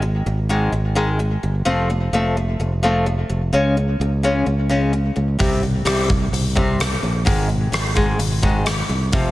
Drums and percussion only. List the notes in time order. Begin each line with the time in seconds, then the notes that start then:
5.40 kick, open hi-hat
5.86 cross-stick, open hi-hat
6.10 kick
6.34 open hi-hat
6.57 kick
6.80 cross-stick, open hi-hat
7.27 kick, open hi-hat
7.73 cross-stick, open hi-hat
7.97 kick
8.20 open hi-hat
8.43 kick
8.66 cross-stick, open hi-hat
9.13 kick, open hi-hat